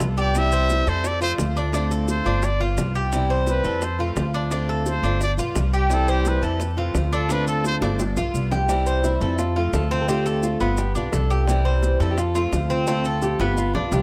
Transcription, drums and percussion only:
0.00 high bongo medium
0.00 low bongo medium
0.00 maracas medium
0.17 high bongo soft
0.17 maracas soft
0.35 high bongo medium
0.35 maracas medium
0.52 maracas medium
0.70 high bongo medium
0.70 maracas medium
0.87 maracas soft
1.04 high bongo medium
1.04 maracas medium
1.22 maracas medium
1.38 high bongo medium
1.38 low bongo medium
1.38 maracas medium
1.56 maracas soft
1.73 high bongo medium
1.73 maracas medium
1.91 high bongo soft
1.91 maracas medium
2.08 high bongo medium
2.08 maracas medium
2.26 maracas soft
2.43 high bongo medium
2.43 maracas medium
2.60 high bongo soft
2.78 high bongo medium
2.78 low bongo medium
2.78 maracas medium
2.95 high bongo soft
2.95 maracas soft
3.12 high bongo medium
3.12 maracas medium
3.47 high bongo medium
3.47 maracas medium
3.64 maracas soft
3.82 high bongo medium
3.82 maracas medium
4.16 high bongo medium
4.16 low bongo medium
4.16 maracas medium
4.34 maracas soft
4.51 high bongo medium
4.51 maracas medium
4.69 high bongo soft
4.86 high bongo medium
4.86 maracas medium
5.04 maracas soft
5.21 high bongo medium
5.21 maracas medium
5.38 high bongo soft
5.38 maracas medium
5.55 high bongo medium
5.55 low bongo medium
5.55 maracas medium
5.73 high bongo soft
5.73 maracas soft
5.90 high bongo medium
5.90 maracas medium
6.08 maracas medium
6.25 high bongo medium
6.25 maracas medium
6.43 maracas soft
6.60 high bongo medium
6.60 maracas medium
6.95 high bongo medium
6.95 low bongo medium
6.95 maracas medium
7.13 maracas soft
7.29 high bongo medium
7.29 maracas medium
7.47 high bongo soft
7.47 maracas medium
7.64 high bongo medium
7.64 maracas medium
7.82 high bongo loud
7.82 maracas soft
7.99 high bongo loud
7.99 maracas medium
8.17 low bongo medium
8.17 maracas medium
8.35 maracas medium
8.52 low bongo medium
8.52 maracas soft
8.69 high bongo medium
8.69 maracas medium
8.86 maracas medium
9.04 high bongo medium
9.04 maracas medium
9.21 maracas soft
9.38 high bongo medium
9.38 maracas medium
9.73 high bongo medium
9.73 low bongo medium
9.73 maracas medium
9.91 maracas soft
10.08 high bongo medium
10.08 maracas medium
10.26 high bongo soft
10.26 maracas medium
10.43 high bongo medium
10.43 maracas medium
10.60 maracas soft
10.77 high bongo medium
10.77 maracas medium
10.95 high bongo soft
10.95 maracas medium
11.13 high bongo medium
11.13 low bongo medium
11.13 maracas medium
11.30 high bongo soft
11.30 maracas soft
11.48 high bongo medium
11.48 maracas medium
11.83 high bongo medium
11.83 maracas medium
12.01 maracas soft
12.18 high bongo medium
12.18 maracas medium
12.35 maracas medium
12.53 high bongo medium
12.53 low bongo medium
12.53 maracas medium
12.70 maracas soft
12.87 high bongo medium
12.87 maracas medium
13.05 high bongo soft
13.05 maracas medium
13.22 high bongo medium
13.22 maracas medium
13.40 high bongo medium
13.40 maracas soft
13.57 maracas medium
13.75 low bongo loud
13.92 low bongo loud
13.92 maracas medium

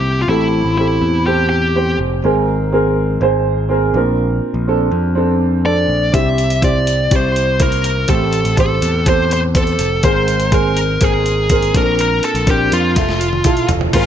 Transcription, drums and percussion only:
6.14 kick medium
6.14 closed hi-hat medium
6.38 closed hi-hat soft
6.50 closed hi-hat soft
6.62 kick medium
6.62 closed hi-hat medium
6.87 closed hi-hat medium
7.11 kick medium
7.11 closed hi-hat medium
7.36 closed hi-hat medium
7.60 kick medium
7.60 closed hi-hat medium
7.72 closed hi-hat soft
7.84 closed hi-hat medium
8.08 kick medium
8.08 closed hi-hat medium
8.33 closed hi-hat soft
8.45 closed hi-hat soft
8.57 kick medium
8.57 closed hi-hat medium
8.82 closed hi-hat medium
9.06 kick medium
9.06 closed hi-hat medium
9.31 closed hi-hat medium
9.55 kick loud
9.55 closed hi-hat medium
9.67 closed hi-hat soft
9.79 closed hi-hat medium
10.03 kick medium
10.03 closed hi-hat medium
10.28 closed hi-hat soft
10.40 closed hi-hat soft
10.52 kick loud
10.52 closed hi-hat medium
10.77 closed hi-hat medium
11.01 kick medium
11.01 closed hi-hat medium
11.26 closed hi-hat medium
11.50 kick medium
11.50 closed hi-hat medium
11.62 closed hi-hat soft
11.75 kick medium
11.75 closed hi-hat medium
11.99 closed hi-hat medium
12.23 closed hi-hat medium
12.35 closed hi-hat soft
12.47 kick medium
12.47 closed hi-hat medium
12.72 closed hi-hat medium
12.96 kick medium
12.96 snare soft
12.96 closed hi-hat medium
13.09 snare soft
13.21 closed hi-hat medium
13.33 high tom medium
13.44 kick medium
13.44 closed hi-hat medium
13.44 mid tom medium
13.57 closed hi-hat soft
13.69 closed hi-hat medium
13.69 floor tom medium
13.81 floor tom medium
13.93 kick loud
13.93 closed hi-hat medium
13.93 crash medium

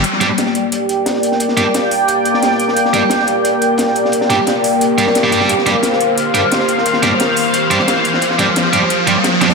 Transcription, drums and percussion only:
0.04 closed hi-hat medium
0.13 snare soft
0.21 snare soft
0.21 closed hi-hat medium
0.38 snare loud
0.38 closed hi-hat medium
0.38 closed hi-hat loud
0.46 snare soft
0.55 closed hi-hat medium
0.72 closed hi-hat loud
0.89 closed hi-hat medium
1.06 snare loud
1.06 closed hi-hat medium
1.14 snare soft
1.23 closed hi-hat medium
1.32 snare soft
1.40 closed hi-hat loud
1.40 closed hi-hat medium
1.48 snare soft
1.57 snare medium
1.57 closed hi-hat medium
1.74 snare loud
1.74 closed hi-hat loud
1.74 closed hi-hat medium
1.91 closed hi-hat medium
1.91 open hi-hat medium
2.08 closed hi-hat medium
2.25 closed hi-hat medium
2.34 snare soft
2.43 snare loud
2.43 closed hi-hat loud
2.43 closed hi-hat medium
2.51 snare soft
2.60 closed hi-hat medium
2.68 snare soft
2.76 closed hi-hat medium
2.85 snare soft
2.94 snare soft
2.94 closed hi-hat medium
3.10 snare loud
3.10 closed hi-hat medium
3.19 snare soft
3.27 closed hi-hat medium
3.45 closed hi-hat medium
3.62 closed hi-hat medium
3.78 snare loud
3.78 closed hi-hat medium
3.87 snare soft
3.95 closed hi-hat medium
4.05 snare soft
4.12 closed hi-hat medium
4.21 snare medium
4.30 snare soft
4.30 closed hi-hat medium
4.47 snare loud
4.47 closed hi-hat medium
4.64 closed hi-hat medium
4.64 open hi-hat medium
4.81 closed hi-hat medium
4.98 closed hi-hat medium
5.07 snare soft
5.15 snare loud
5.15 closed hi-hat medium
5.23 snare soft
5.32 closed hi-hat medium
5.41 snare soft
5.49 closed hi-hat medium
5.58 snare soft
5.66 snare soft
5.66 closed hi-hat medium
5.83 snare loud
5.83 closed hi-hat medium
5.93 snare medium
6.01 closed hi-hat medium
6.18 closed hi-hat medium
6.34 closed hi-hat medium
6.52 snare loud
6.52 closed hi-hat medium
6.60 snare soft
6.68 closed hi-hat medium
6.78 snare soft
6.86 closed hi-hat medium
6.93 snare soft
7.03 snare medium
7.03 closed hi-hat medium
7.20 snare loud
7.20 closed hi-hat medium
7.36 closed hi-hat medium
7.36 open hi-hat medium
7.54 closed hi-hat loud
7.54 closed hi-hat medium
7.71 closed hi-hat medium
7.79 snare soft
7.88 snare loud
7.88 closed hi-hat medium
7.88 closed hi-hat loud
7.96 snare soft
8.04 closed hi-hat medium
8.13 snare soft
8.21 closed hi-hat loud
8.21 closed hi-hat medium
8.30 snare soft
8.39 snare soft
8.39 closed hi-hat medium
8.56 snare loud
8.56 closed hi-hat loud
8.56 closed hi-hat medium
8.64 snare soft
8.73 closed hi-hat medium
8.90 closed hi-hat loud
8.90 closed hi-hat medium
9.07 closed hi-hat medium
9.24 snare loud
9.24 closed hi-hat loud
9.24 closed hi-hat medium
9.33 snare soft
9.41 snare loud
9.41 closed hi-hat medium
9.50 snare medium
9.50 closed hi-hat medium

